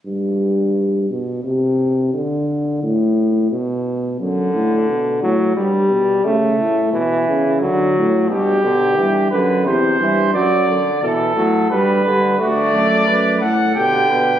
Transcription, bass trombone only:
X:1
M:3/4
L:1/8
Q:1/4=88
K:G
V:1 name="Bass trombone" clef=bass
G,,3 B,, C,2 | D,2 A,,2 B,,2 | F,, A,, B,, A,, G,, B,, | ^C, A,, B,, C, D, A,, |
G,, B,, G,, F,, E,, G,, | F,, z B,, A,, G,, G,, | D,, F,, F,, A,, B,, B,, |]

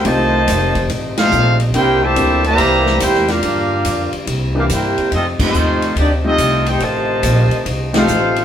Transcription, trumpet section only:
X:1
M:4/4
L:1/8
Q:"Swing" 1/4=142
K:Flyd
V:1 name="Trumpet section"
[Fc_ea]4 z [_EAcf]2 z | [E_Bcg] [Gcea]2 [Gce_b]3 [EBcg] [DGBf]- | [DG_Bf]3 z2 [DGBf] [EBcg]2 | [CFA_e] [A,_EFc]3 [_B,EGd] [CFAe]2 [EAcg] |
[Fc_ea]4 z [_EAcf]3 |]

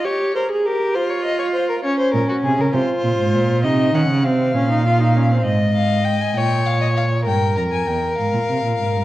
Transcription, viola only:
X:1
M:6/8
L:1/16
Q:3/8=66
K:Bbm
V:1 name="Viola"
=G2 B A G2 F6 | D6 F6 | E2 D2 C2 D E F E D C | z12 |
z12 |]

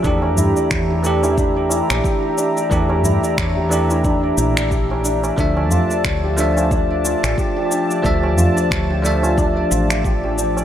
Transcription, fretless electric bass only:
X:1
M:4/4
L:1/16
Q:"Swing 16ths" 1/4=90
K:Dm
V:1 name="Fretless electric bass" clef=bass
E,,2 G,, z E,,6 z B,,, z4 | E,,2 G,, z E,,4- E,, z B,,,4- B,,, z | D,,2 F,, z D,,6 z A,,, z4 | D,,2 F,, z D,,4- D,, z A,,,4- A,,, z |]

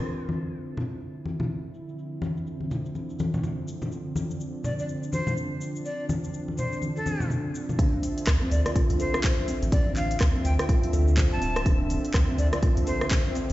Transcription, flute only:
X:1
M:4/4
L:1/16
Q:"Swing 16ths" 1/4=124
K:Dm
V:1 name="Flute"
z16 | z16 | z6 d d z2 c2 z4 | d2 z4 c2 z A3 z4 |
z6 d d z2 c2 z4 | d2 f2 z2 g g z4 z a3 | z6 d d z2 c2 z4 |]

